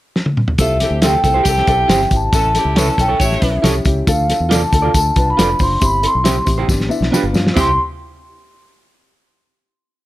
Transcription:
0.16 snare
0.26 high tom
0.37 mid tom
0.48 floor tom
0.58 C2 A3 C4 E4 F4 G4 A4 E5, kick, closed hi-hat, tambourine, muted conga, low conga
0.69 high conga
0.80 E3 C4 E4 G4 A4, snare, closed hi-hat, tambourine
0.91 D2
1.02 A3 C4 E4 F4 G4 A4 C5, snare, closed hi-hat, tambourine, high conga
1.06 G5
1.13 high conga
1.22 C2 A3 C4 E4 F4 A4, kick, closed hi-hat, tambourine, low conga
1.34 E4 G4 C5, high conga
1.43 C2 E3 C4 E4 G4, kick, closed hi-hat, tambourine
1.48 A4 G5
1.58 snare
1.67 B1 C4 E4 A4, kick, closed hi-hat, tambourine
1.88 G1 C4 E4 G4 C5, snare, closed hi-hat, tambourine, high conga
2.00 snare
2.11 G#1 C4 E4 G4, kick, closed hi-hat, tambourine, low conga
2.16 A5
2.33 A1 E3 C#4 E4 A4, kick, closed hi-hat, tambourine, low conga
2.43 high conga
2.54 G3 C#4 E4 G4 A4, snare, closed hi-hat, tambourine
2.65 C#2
2.76 E3 C#4 E4 A4 B4 C#5, snare, closed hi-hat, tambourine, muted conga, high conga
2.87 high conga
2.98 B1 E3 C#4 E4 A4 G5, kick, closed hi-hat, tambourine, muted conga, low conga
3.08 E4 A4 C#5, high conga
3.19 A1 A3 C#4 E4 G4 C#5, kick, closed hi-hat, tambourine, muted conga
3.23 E5
3.32 snare
3.42 B1 C#4 E4 B4, kick, closed hi-hat, tambourine, muted conga
3.62 C2 C#4 E4 G4 A4 C#5, snare, closed hi-hat, tambourine, muted conga, high conga
3.84 C#2 C#4 E4 G4, kick, closed hi-hat, tambourine, low conga
4.07 D2 D4 F4 A4 F5, kick, closed hi-hat, tambourine, low conga
4.18 high conga
4.28 D4 F4 A4, snare, closed hi-hat, tambourine
4.40 E2
4.49 D4 F4 A4 D5 A5, snare, closed hi-hat, tambourine, muted conga, high conga
4.62 high conga
4.72 D2 D4 F4 A4, kick, closed hi-hat, tambourine, low conga
4.82 F4 A4 D5, high conga
4.94 D2 D4 F4 A4 A5, kick, closed hi-hat, tambourine
5.16 C2 D4 F4 B4, kick, closed hi-hat, tambourine, muted conga
5.30 B5
5.37 F1 D4 F4 A4 B4 D5, snare, closed hi-hat, tambourine, muted conga, high conga
5.59 F#1 D4 F4 C5 C6, kick, open hi-hat, tambourine, low conga
5.80 G1 C4 E4 G4, kick, closed hi-hat, tambourine, low conga
5.85 B5
5.92 high conga
6.01 C4 E4 A4, closed hi-hat, tambourine
6.06 C6
6.15 B1
6.24 C4 E4 G4 C5, snare, closed hi-hat, tambourine, muted conga, high conga
6.36 high conga
6.44 A1 C4 E4 G4, kick, closed hi-hat, tambourine, muted conga, low conga
6.58 E4 G4 C5, high conga
6.67 G1 B3 D4 G4, kick, snare, tambourine, muted conga
6.80 A1, snare
6.89 B3 D4 E4, tambourine, muted conga
7.01 B1, snare
7.11 B3 D4 F4 G4 B4, snare, tambourine, high conga
7.23 G1
7.33 G2 B3 D4 F4, snare, tambourine, muted conga, low conga
7.47 snare
7.54 C2 E3 C4 E4 G4 C5, kick, floor tom, tambourine, splash, high conga
7.59 C6

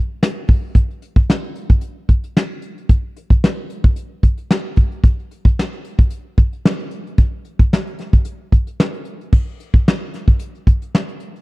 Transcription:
0.23 snare, closed hi-hat
0.47 kick, open hi-hat
0.75 kick, closed hi-hat
0.90 closed hi-hat
1.02 closed hi-hat
1.16 kick, closed hi-hat
1.30 snare
1.55 closed hi-hat
1.70 kick, closed hi-hat
1.81 closed hi-hat
2.09 kick, closed hi-hat
2.24 closed hi-hat
2.37 snare
2.62 closed hi-hat
2.78 closed hi-hat
2.89 kick, closed hi-hat
3.16 closed hi-hat
3.30 kick, closed hi-hat
3.44 snare
3.70 closed hi-hat
3.84 kick, closed hi-hat
3.96 closed hi-hat
4.23 kick, closed hi-hat
4.38 closed hi-hat
4.51 snare
4.76 kick, closed hi-hat
4.92 closed hi-hat
5.04 kick, closed hi-hat
5.19 closed hi-hat
5.31 closed hi-hat
5.45 kick, closed hi-hat
5.59 snare
5.73 closed hi-hat
5.85 closed hi-hat
5.99 kick, closed hi-hat
6.10 closed hi-hat
6.38 kick, closed hi-hat
6.53 closed hi-hat
6.65 snare
6.79 closed hi-hat
6.91 closed hi-hat
7.07 closed hi-hat
7.18 kick, closed hi-hat
7.45 closed hi-hat
7.59 kick, closed hi-hat
7.73 snare
7.87 closed hi-hat
7.99 snare, closed hi-hat
8.13 kick, closed hi-hat
8.25 closed hi-hat
8.52 kick, closed hi-hat
8.67 closed hi-hat
8.80 snare
8.94 closed hi-hat
9.05 closed hi-hat
9.21 closed hi-hat
9.32 kick, crash
9.60 closed hi-hat
9.74 kick, closed hi-hat
9.88 snare
10.13 snare, closed hi-hat
10.28 kick, closed hi-hat
10.39 closed hi-hat
10.55 closed hi-hat
10.67 kick, closed hi-hat
10.82 closed hi-hat
10.95 snare
11.08 closed hi-hat
11.20 closed hi-hat
11.36 closed hi-hat

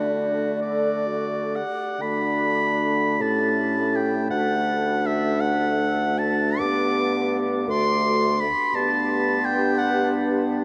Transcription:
Already playing: D3 A3 D4 F#4 D5
0.61 A4 D5
1.07 F#4
1.55 G4 F#5
1.99 D3 A3 D4 F#4 B5
3.21 A2 C#4 G4 A5
3.96 G5
4.30 D2 D4 F#4 F#5
5.06 E5
5.41 F#5
6.19 A5
6.57 G2 B3 G4 D6
7.68 D2 A3 F#4 C6
8.40 B5
8.75 G2 B3 D4 G4 A5
9.45 G5
9.79 F#5

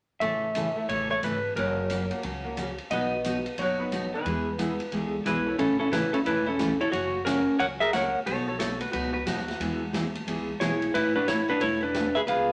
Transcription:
0.20 A1 C#3 E3 A3 C#4 A4 E5, ride
0.55 C#3 E3 A3 C#4 A4, hi-hat pedal, ride
0.76 A3 C#4 E4 A4
0.88 A1 C#3 E3 A3 C#4 A4 C#5, ride
1.10 A3 C#5
1.22 G#1 C#3 E3 A3 C#4 A4 B4, hi-hat pedal, ride
1.55 F#1 C#3 F#3 A#3 C#4 F#4 A#4, ride
1.90 C#3 F#3 A#3 C#4 F#4, hi-hat pedal, ride
2.10 A#3 C#4 F#4 A#4, ride
2.23 C#2 C#3 F#3 A#3 C#4 F#4, ride
2.44 A#3 C#4 F#4 A#4
2.57 C#3 F#3 A#3 C#4 F#4, hi-hat pedal, ride
2.78 ride
2.90 B1 B2 F#3 B3 D#4 F#4 B4 D#5, ride
3.24 B2 F#3 B3 D#4 F#4, hi-hat pedal, ride
3.46 ride
3.58 F#1 B2 F#3 B3 D#4 F#4 C#5, ride
3.78 B3 D#4 F#4 B4
3.92 B2 F#3 B3 D#4 F#4, hi-hat pedal, ride
4.14 E3 B4
4.25 E2 E3 G#3 B3 E4 G#4, ride
4.58 E3 G#3 B3 E4 G#4 B4, hi-hat pedal, ride
4.80 ride
4.92 C#2 E3 G#3 B3 E4 G#4, ride
5.02 D3 A4
5.25 B1 E3 G#3 B3 E4 G#4 B4, hi-hat pedal, ride
5.46 C#4 E4 A4 C#5
5.58 A1 C#3 E3 A3 C#4 E4 A4, ride
5.79 C#4 E4 A4
5.91 C#3 E3 A3 C#4 E4 A4 B4, snare, hi-hat pedal, ride
6.13 C#4 E4 A4, ride
6.25 E1 C#3 E3 A3 C#4 E4 A4 B4, ride
6.46 C#4 E4 A4
6.59 C#3 E3 A3 C#4 A4, snare, hi-hat pedal, ride
6.81 E4 A4 C#5, ride
6.92 F#1 C#3 F#3 A#3 C#4 F#4 C#5, ride
7.25 C#3 F#3 A#3 C#4 F#4 A#4, snare, hi-hat pedal, ride
7.59 C#2 C#3 F#3 A#3 C#4 F#4 A#4 C#5 F#5, ride
7.80 G#4 A#4 E5
7.93 C#3 F#3 A#3 C#4 F#4 A#4 C#5 F#5, snare, hi-hat pedal, ride
8.26 B1 B2 F#3 B3 D#4 F#4 A4 C#5, ride
8.48 A4 C#5
8.59 B2 F#3 B3 D#4 F#4 A4 C#5, snare, hi-hat pedal, ride
8.81 F#4 B4, ride
8.92 C#2 B2 F#3 B3 D#4 F#4 B4, ride
9.13 F#4 B4
9.26 D#2 B2 F#3 B3 D#4 F#4, snare, hi-hat pedal, ride
9.38 snare
9.48 snare, ride
9.60 E2 E3 G#3 B3 E4 G#4, ride
9.93 E3 G#3 B3 E4 G#4, snare, hi-hat pedal, ride
10.15 ride
10.27 C#2 E3 G#3 B3 E4 G#4, ride
10.60 B1 E3 G#3 B3 E4 G#4 C#5, snare, hi-hat pedal, ride
10.82 ride
10.94 A1 A3 C#4 E4 B4, ride
11.16 D4 F#4 B4
11.28 A3 C#4 E4 A4 B4 C#5, snare, hi-hat pedal, ride
11.48 D4 F#4 B4
11.60 E1 A3 C#4 E4 A4 B4 C#5, ride
11.80 D4 E4 B4
11.94 A3 C#4 E4 B4, snare, hi-hat pedal, ride
12.15 G#4 B4 E5
12.27 C#2 C#3 G#3 B3 F4 G#4 B4 F5, ride

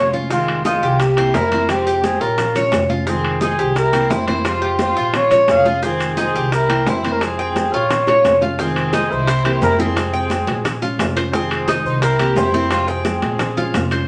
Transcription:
Already playing: F1 F3 G#3 C#4 F4 C#5
0.13 G#3 C#4 F4, high conga, maracas
0.30 C3 D#3 G#3 C4 F4, high bongo, high conga, maracas
0.48 high conga, high timbale
0.65 D#3 G#3 C4 D#4 F4, high bongo, high conga, low timbale, maracas
0.82 C2 G4, maracas
0.99 A#3 G4, muted nylon-string guitar stroke, high bongo, high conga, high timbale, maracas
1.17 E3 A#3 C4 E4, high conga, high timbale
1.34 F2 E3 A#3 C4 E4 A#4, high bongo, low bongo, high conga, low timbale, maracas
1.52 E3 A#3 C4 E4 C5, high conga, high timbale, maracas
1.69 C3 F3 G#3 C4 G4, high bongo, high conga, high timbale, maracas
1.86 G4, high bongo, high conga, maracas
2.03 F3 G#3 C4 G4 G#4, high bongo, high conga, high timbale, low timbale, maracas
2.20 A#1 C#4 F4 A#4, high bongo, high conga, maracas
2.38 muted nylon-string guitar stroke, high bongo, high conga, low conga, high timbale, maracas
2.55 G#3 C#4 F4 C#5, high bongo, high conga, low conga, high timbale, maracas
2.72 F1 F3 G#3 C#4 F4, high bongo, low bongo, high conga, high timbale, low timbale, maracas
2.89 G#3 C#4 F4, high conga, maracas
3.07 C3 D#3 G#3 C4 F4 G#4, high bongo, maracas
3.24 high conga, high timbale
3.41 D#3 G#3 C4 D#4 F4 G#4, high bongo, high conga, low timbale, maracas
3.59 C2 G4, maracas
3.75 E4 A#4, muted nylon-string guitar stroke, high bongo, high conga, high timbale, maracas
3.93 E3 A#3 C4 E4, high conga, high timbale, maracas
4.10 F2 E3 A#3 C4 E4 C5, high bongo, low bongo, high conga, low timbale, maracas
4.27 E3 A#3 C4 E4 C5, high conga, high timbale, maracas
4.44 C3 F3 G#3 C4 F4 G4 C5, high bongo, high conga, high timbale, maracas
4.62 G4, high bongo, high conga
4.79 F3 G#3 C4 F4 G4 C5, high bongo, high conga, high timbale, low timbale, maracas
4.96 A#1 F4, high bongo, maracas
5.13 F4 C#5, muted nylon-string guitar stroke, high bongo, high conga, low conga, high timbale, maracas
5.30 G#3 C#4 F4 C#5, high bongo, high conga, low conga, high timbale, maracas
5.48 F1 G#3 C#4 F4 G#4 F5, high bongo, low bongo, high conga, high timbale, low timbale, maracas
5.65 G#3 C#4 F4, high conga, maracas
5.83 C3 D#3 G#3 C4 F4 G#4, high bongo, high conga, maracas
6.00 high conga, high timbale, maracas
6.17 D#3 G#3 C4 D#4 F4 G#4, high bongo, high conga, low timbale, maracas
6.34 C2 G4, maracas
6.52 E4 A#4, muted nylon-string guitar stroke, high bongo, high conga, high timbale, maracas
6.69 E3 A#3 C4 E4, high conga, high timbale
6.86 F2 E3 A#3 C4 E4 C5, high bongo, low bongo, high conga, low timbale, maracas
7.03 E3 A#3 C4 E4 C5, high conga, high timbale, maracas
7.11 C#4 A#4
7.21 C3 F3 G#3 C4 G#4, high bongo, high conga, high timbale, maracas
7.39 G5, high bongo, high conga
7.55 F3 G#3 C4 G4, high bongo, high conga, high timbale, low timbale, maracas
7.72 A#1 F4 C#5, high bongo, high conga, maracas
7.90 muted nylon-string guitar stroke, high bongo, high conga, low conga, high timbale, maracas
8.07 G#3 C#4 F4 C#5, high bongo, high conga, high timbale
8.24 F1 F3 G#3 C#4 F4, low bongo, high conga, high timbale, low timbale, maracas
8.41 G#3 C#4 F4, low bongo, high conga, maracas
8.59 C3 D#3 G#3 C4 F4 G#4, high bongo, high conga, maracas
8.76 high bongo, high conga, high timbale, maracas
8.93 D#3 G#3 C4 D#4 F4, high bongo, high conga, high timbale, low timbale, maracas
9.10 C2 E4 C5, maracas
9.27 C4, muted nylon-string guitar stroke, high bongo, high conga, high timbale, maracas
9.44 E3 A#3 C4 E4 G4, high bongo, high conga, high timbale, maracas
9.61 F2 E3 A#3 E4 A#4, high bongo, low bongo, high conga, low timbale, maracas
9.78 E3 A#3 C4 E4 G#4, high bongo, high conga, maracas
9.96 C3 F3 G#3 C4, high bongo, high conga, high timbale, maracas
10.13 G5, high bongo, high conga, maracas
10.30 F3 G#3 C4, high bongo, high conga, high timbale, low timbale, maracas
10.47 A#1, high conga, high timbale, maracas
10.65 muted nylon-string guitar stroke, high bongo, high conga, low conga, high timbale, maracas
10.82 G#3 C#4 F4, high bongo, high conga, maracas
10.99 F1 F3 G#3 F4, high bongo, low bongo, high conga, high timbale, low timbale, maracas
11.16 G#3 C#4 F4 C5, high bongo, high conga, high timbale, maracas
11.33 C3 D#3 G#3 C4 F4 G#4, high bongo, high conga, maracas
11.51 high bongo, high conga, high timbale, maracas
11.68 D#3 G#3 C4 D#4 F4, high bongo, high conga, high timbale, low timbale, maracas
11.84 C2 D#4 C5, maracas
12.02 C4 E4 A#4, muted nylon-string guitar stroke, high bongo, high conga, high timbale, maracas
12.19 E3 A#3 C4 E4 G4, high bongo, high conga, high timbale, maracas
12.36 F2 E3 A#3 C4 E4 C5, high bongo, low bongo, high conga, low timbale, maracas
12.53 E3 A#3 C4 E4, high bongo, high conga, maracas
12.70 C3 F3 G#3 C4 F4 G4 C5, high bongo, high conga, high timbale, maracas
12.87 C4 G#4 G5, high bongo, high conga, maracas
13.05 F3 G#3 C4, high bongo, high conga, high timbale, low timbale, maracas
13.22 A#1, high conga, high timbale, maracas
13.39 muted nylon-string guitar stroke, high bongo, high conga, low conga, high timbale, maracas
13.57 G#3 C#4 F4, high bongo, high conga, low conga, maracas
13.73 F1 F3 G#3 C#4 F4, high bongo, low bongo, high conga, high timbale, low timbale, maracas
13.91 G#3 C#4 F4 C5, high bongo, high conga, high timbale, maracas

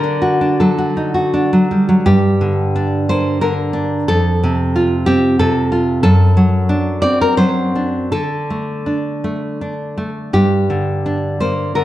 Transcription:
Already playing: D3 A#4
0.04 D4
0.22 F#4
0.41 D4
0.60 F#3 A4
0.78 F#4
0.97 D#4
1.14 F#4
1.34 D4
1.53 F#3
1.71 G3
1.89 F#3
2.06 G2 G4
2.41 D3
2.76 D4
3.09 A#3 C5
3.41 D3 A#4
3.73 D4
4.08 F2 A4
4.44 C3
4.76 F4
5.06 C4 G4
5.39 C3 A4
5.72 F4
6.03 F#2 A4
6.37 F#3
6.69 D4
7.02 C4 D5
7.21 A#4
7.37 F#3 C5
7.75 D4
8.12 D3 A4
8.50 A3
8.86 D4
9.24 A3
9.61 D4
9.98 A3
10.33 G2 G4
10.70 D3
11.06 D4
11.40 A#3 C5
11.75 D3 A#4

